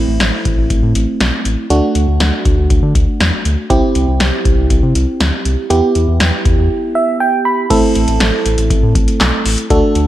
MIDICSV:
0, 0, Header, 1, 4, 480
1, 0, Start_track
1, 0, Tempo, 500000
1, 1635, Time_signature, 4, 2, 24, 8
1, 9669, End_track
2, 0, Start_track
2, 0, Title_t, "FM electric piano"
2, 0, Program_c, 0, 5
2, 0, Note_on_c, 0, 57, 74
2, 0, Note_on_c, 0, 60, 68
2, 0, Note_on_c, 0, 64, 82
2, 1597, Note_off_c, 0, 57, 0
2, 1597, Note_off_c, 0, 60, 0
2, 1597, Note_off_c, 0, 64, 0
2, 1635, Note_on_c, 0, 62, 68
2, 1636, Note_on_c, 0, 57, 76
2, 1636, Note_on_c, 0, 66, 83
2, 3517, Note_off_c, 0, 57, 0
2, 3517, Note_off_c, 0, 62, 0
2, 3517, Note_off_c, 0, 66, 0
2, 3551, Note_on_c, 0, 64, 70
2, 3552, Note_on_c, 0, 60, 80
2, 3552, Note_on_c, 0, 67, 82
2, 5435, Note_off_c, 0, 60, 0
2, 5435, Note_off_c, 0, 64, 0
2, 5435, Note_off_c, 0, 67, 0
2, 5472, Note_on_c, 0, 59, 75
2, 5473, Note_on_c, 0, 67, 87
2, 5474, Note_on_c, 0, 64, 73
2, 6674, Note_on_c, 0, 76, 74
2, 6898, Note_off_c, 0, 76, 0
2, 6916, Note_on_c, 0, 79, 78
2, 7139, Note_off_c, 0, 79, 0
2, 7154, Note_on_c, 0, 83, 71
2, 7355, Note_off_c, 0, 59, 0
2, 7356, Note_off_c, 0, 64, 0
2, 7356, Note_off_c, 0, 67, 0
2, 7378, Note_off_c, 0, 83, 0
2, 7394, Note_on_c, 0, 57, 79
2, 7394, Note_on_c, 0, 60, 70
2, 7394, Note_on_c, 0, 64, 72
2, 7395, Note_on_c, 0, 69, 88
2, 9276, Note_off_c, 0, 57, 0
2, 9276, Note_off_c, 0, 60, 0
2, 9276, Note_off_c, 0, 64, 0
2, 9276, Note_off_c, 0, 69, 0
2, 9317, Note_on_c, 0, 57, 82
2, 9317, Note_on_c, 0, 62, 75
2, 9317, Note_on_c, 0, 66, 71
2, 9317, Note_on_c, 0, 69, 84
2, 9669, Note_off_c, 0, 57, 0
2, 9669, Note_off_c, 0, 62, 0
2, 9669, Note_off_c, 0, 66, 0
2, 9669, Note_off_c, 0, 69, 0
2, 9669, End_track
3, 0, Start_track
3, 0, Title_t, "Analog synth bass"
3, 0, Program_c, 1, 38
3, 73, Note_on_c, 1, 33, 98
3, 180, Note_off_c, 1, 33, 0
3, 194, Note_on_c, 1, 33, 105
3, 300, Note_off_c, 1, 33, 0
3, 437, Note_on_c, 1, 33, 92
3, 542, Note_off_c, 1, 33, 0
3, 555, Note_on_c, 1, 33, 89
3, 661, Note_off_c, 1, 33, 0
3, 675, Note_on_c, 1, 33, 105
3, 781, Note_off_c, 1, 33, 0
3, 795, Note_on_c, 1, 45, 95
3, 901, Note_off_c, 1, 45, 0
3, 915, Note_on_c, 1, 33, 101
3, 1021, Note_off_c, 1, 33, 0
3, 1155, Note_on_c, 1, 35, 89
3, 1261, Note_off_c, 1, 35, 0
3, 1394, Note_on_c, 1, 33, 90
3, 1500, Note_off_c, 1, 33, 0
3, 1633, Note_on_c, 1, 38, 112
3, 1740, Note_off_c, 1, 38, 0
3, 1874, Note_on_c, 1, 38, 102
3, 1980, Note_off_c, 1, 38, 0
3, 1995, Note_on_c, 1, 38, 93
3, 2101, Note_off_c, 1, 38, 0
3, 2115, Note_on_c, 1, 38, 108
3, 2221, Note_off_c, 1, 38, 0
3, 2356, Note_on_c, 1, 38, 103
3, 2462, Note_off_c, 1, 38, 0
3, 2472, Note_on_c, 1, 38, 93
3, 2579, Note_off_c, 1, 38, 0
3, 2595, Note_on_c, 1, 38, 108
3, 2701, Note_off_c, 1, 38, 0
3, 2713, Note_on_c, 1, 50, 92
3, 2820, Note_off_c, 1, 50, 0
3, 2834, Note_on_c, 1, 38, 102
3, 2940, Note_off_c, 1, 38, 0
3, 3074, Note_on_c, 1, 40, 89
3, 3180, Note_off_c, 1, 40, 0
3, 3315, Note_on_c, 1, 38, 89
3, 3421, Note_off_c, 1, 38, 0
3, 3555, Note_on_c, 1, 36, 101
3, 3661, Note_off_c, 1, 36, 0
3, 3794, Note_on_c, 1, 36, 101
3, 3900, Note_off_c, 1, 36, 0
3, 3913, Note_on_c, 1, 36, 98
3, 4020, Note_off_c, 1, 36, 0
3, 4034, Note_on_c, 1, 36, 101
3, 4140, Note_off_c, 1, 36, 0
3, 4275, Note_on_c, 1, 36, 101
3, 4381, Note_off_c, 1, 36, 0
3, 4394, Note_on_c, 1, 36, 92
3, 4500, Note_off_c, 1, 36, 0
3, 4515, Note_on_c, 1, 36, 119
3, 4621, Note_off_c, 1, 36, 0
3, 4634, Note_on_c, 1, 48, 89
3, 4740, Note_off_c, 1, 48, 0
3, 4755, Note_on_c, 1, 36, 107
3, 4861, Note_off_c, 1, 36, 0
3, 4995, Note_on_c, 1, 38, 94
3, 5101, Note_off_c, 1, 38, 0
3, 5235, Note_on_c, 1, 36, 84
3, 5341, Note_off_c, 1, 36, 0
3, 5475, Note_on_c, 1, 40, 108
3, 5581, Note_off_c, 1, 40, 0
3, 5716, Note_on_c, 1, 40, 94
3, 5821, Note_off_c, 1, 40, 0
3, 5837, Note_on_c, 1, 40, 96
3, 5942, Note_off_c, 1, 40, 0
3, 5957, Note_on_c, 1, 40, 97
3, 6062, Note_off_c, 1, 40, 0
3, 6196, Note_on_c, 1, 40, 102
3, 6302, Note_off_c, 1, 40, 0
3, 6317, Note_on_c, 1, 40, 97
3, 6422, Note_off_c, 1, 40, 0
3, 7397, Note_on_c, 1, 33, 103
3, 7502, Note_off_c, 1, 33, 0
3, 7636, Note_on_c, 1, 33, 94
3, 7742, Note_off_c, 1, 33, 0
3, 7756, Note_on_c, 1, 33, 99
3, 7861, Note_off_c, 1, 33, 0
3, 7876, Note_on_c, 1, 33, 111
3, 7981, Note_off_c, 1, 33, 0
3, 8117, Note_on_c, 1, 33, 96
3, 8222, Note_off_c, 1, 33, 0
3, 8237, Note_on_c, 1, 33, 96
3, 8342, Note_off_c, 1, 33, 0
3, 8355, Note_on_c, 1, 33, 112
3, 8461, Note_off_c, 1, 33, 0
3, 8477, Note_on_c, 1, 45, 98
3, 8582, Note_off_c, 1, 45, 0
3, 8594, Note_on_c, 1, 33, 101
3, 8700, Note_off_c, 1, 33, 0
3, 8836, Note_on_c, 1, 35, 91
3, 8942, Note_off_c, 1, 35, 0
3, 9076, Note_on_c, 1, 33, 90
3, 9181, Note_off_c, 1, 33, 0
3, 9316, Note_on_c, 1, 38, 118
3, 9421, Note_off_c, 1, 38, 0
3, 9554, Note_on_c, 1, 38, 101
3, 9660, Note_off_c, 1, 38, 0
3, 9669, End_track
4, 0, Start_track
4, 0, Title_t, "Drums"
4, 193, Note_on_c, 9, 42, 75
4, 194, Note_on_c, 9, 38, 100
4, 289, Note_off_c, 9, 42, 0
4, 290, Note_off_c, 9, 38, 0
4, 435, Note_on_c, 9, 42, 69
4, 436, Note_on_c, 9, 36, 89
4, 531, Note_off_c, 9, 42, 0
4, 532, Note_off_c, 9, 36, 0
4, 674, Note_on_c, 9, 42, 64
4, 675, Note_on_c, 9, 36, 82
4, 770, Note_off_c, 9, 42, 0
4, 771, Note_off_c, 9, 36, 0
4, 915, Note_on_c, 9, 42, 82
4, 1011, Note_off_c, 9, 42, 0
4, 1156, Note_on_c, 9, 42, 67
4, 1157, Note_on_c, 9, 38, 109
4, 1252, Note_off_c, 9, 42, 0
4, 1253, Note_off_c, 9, 38, 0
4, 1395, Note_on_c, 9, 42, 73
4, 1491, Note_off_c, 9, 42, 0
4, 1635, Note_on_c, 9, 42, 78
4, 1731, Note_off_c, 9, 42, 0
4, 1874, Note_on_c, 9, 42, 68
4, 1970, Note_off_c, 9, 42, 0
4, 2115, Note_on_c, 9, 42, 75
4, 2116, Note_on_c, 9, 38, 107
4, 2211, Note_off_c, 9, 42, 0
4, 2212, Note_off_c, 9, 38, 0
4, 2356, Note_on_c, 9, 36, 90
4, 2356, Note_on_c, 9, 42, 67
4, 2452, Note_off_c, 9, 36, 0
4, 2452, Note_off_c, 9, 42, 0
4, 2595, Note_on_c, 9, 36, 89
4, 2595, Note_on_c, 9, 42, 66
4, 2691, Note_off_c, 9, 36, 0
4, 2691, Note_off_c, 9, 42, 0
4, 2833, Note_on_c, 9, 36, 92
4, 2835, Note_on_c, 9, 42, 83
4, 2929, Note_off_c, 9, 36, 0
4, 2931, Note_off_c, 9, 42, 0
4, 3076, Note_on_c, 9, 42, 69
4, 3077, Note_on_c, 9, 38, 110
4, 3172, Note_off_c, 9, 42, 0
4, 3173, Note_off_c, 9, 38, 0
4, 3315, Note_on_c, 9, 42, 74
4, 3411, Note_off_c, 9, 42, 0
4, 3554, Note_on_c, 9, 42, 78
4, 3555, Note_on_c, 9, 36, 106
4, 3650, Note_off_c, 9, 42, 0
4, 3651, Note_off_c, 9, 36, 0
4, 3794, Note_on_c, 9, 42, 67
4, 3890, Note_off_c, 9, 42, 0
4, 4033, Note_on_c, 9, 42, 75
4, 4034, Note_on_c, 9, 38, 105
4, 4129, Note_off_c, 9, 42, 0
4, 4130, Note_off_c, 9, 38, 0
4, 4275, Note_on_c, 9, 42, 70
4, 4276, Note_on_c, 9, 36, 95
4, 4371, Note_off_c, 9, 42, 0
4, 4372, Note_off_c, 9, 36, 0
4, 4514, Note_on_c, 9, 36, 84
4, 4515, Note_on_c, 9, 42, 67
4, 4610, Note_off_c, 9, 36, 0
4, 4611, Note_off_c, 9, 42, 0
4, 4756, Note_on_c, 9, 42, 83
4, 4852, Note_off_c, 9, 42, 0
4, 4997, Note_on_c, 9, 38, 109
4, 4997, Note_on_c, 9, 42, 70
4, 5093, Note_off_c, 9, 38, 0
4, 5093, Note_off_c, 9, 42, 0
4, 5236, Note_on_c, 9, 42, 77
4, 5332, Note_off_c, 9, 42, 0
4, 5476, Note_on_c, 9, 42, 80
4, 5572, Note_off_c, 9, 42, 0
4, 5715, Note_on_c, 9, 42, 68
4, 5811, Note_off_c, 9, 42, 0
4, 5954, Note_on_c, 9, 42, 78
4, 5955, Note_on_c, 9, 38, 105
4, 6050, Note_off_c, 9, 42, 0
4, 6051, Note_off_c, 9, 38, 0
4, 6197, Note_on_c, 9, 36, 92
4, 6197, Note_on_c, 9, 42, 68
4, 6293, Note_off_c, 9, 36, 0
4, 6293, Note_off_c, 9, 42, 0
4, 7397, Note_on_c, 9, 36, 110
4, 7397, Note_on_c, 9, 42, 85
4, 7397, Note_on_c, 9, 49, 99
4, 7493, Note_off_c, 9, 36, 0
4, 7493, Note_off_c, 9, 42, 0
4, 7493, Note_off_c, 9, 49, 0
4, 7636, Note_on_c, 9, 42, 70
4, 7732, Note_off_c, 9, 42, 0
4, 7755, Note_on_c, 9, 42, 57
4, 7851, Note_off_c, 9, 42, 0
4, 7875, Note_on_c, 9, 42, 78
4, 7876, Note_on_c, 9, 38, 108
4, 7971, Note_off_c, 9, 42, 0
4, 7972, Note_off_c, 9, 38, 0
4, 8118, Note_on_c, 9, 42, 71
4, 8214, Note_off_c, 9, 42, 0
4, 8235, Note_on_c, 9, 42, 54
4, 8331, Note_off_c, 9, 42, 0
4, 8356, Note_on_c, 9, 36, 92
4, 8357, Note_on_c, 9, 42, 69
4, 8452, Note_off_c, 9, 36, 0
4, 8453, Note_off_c, 9, 42, 0
4, 8594, Note_on_c, 9, 36, 97
4, 8596, Note_on_c, 9, 42, 84
4, 8690, Note_off_c, 9, 36, 0
4, 8692, Note_off_c, 9, 42, 0
4, 8715, Note_on_c, 9, 42, 58
4, 8811, Note_off_c, 9, 42, 0
4, 8838, Note_on_c, 9, 42, 70
4, 8839, Note_on_c, 9, 38, 108
4, 8839, Note_on_c, 9, 39, 96
4, 8934, Note_off_c, 9, 42, 0
4, 8935, Note_off_c, 9, 38, 0
4, 8935, Note_off_c, 9, 39, 0
4, 9077, Note_on_c, 9, 46, 81
4, 9173, Note_off_c, 9, 46, 0
4, 9195, Note_on_c, 9, 42, 56
4, 9291, Note_off_c, 9, 42, 0
4, 9316, Note_on_c, 9, 36, 112
4, 9316, Note_on_c, 9, 42, 81
4, 9412, Note_off_c, 9, 36, 0
4, 9412, Note_off_c, 9, 42, 0
4, 9555, Note_on_c, 9, 42, 70
4, 9651, Note_off_c, 9, 42, 0
4, 9669, End_track
0, 0, End_of_file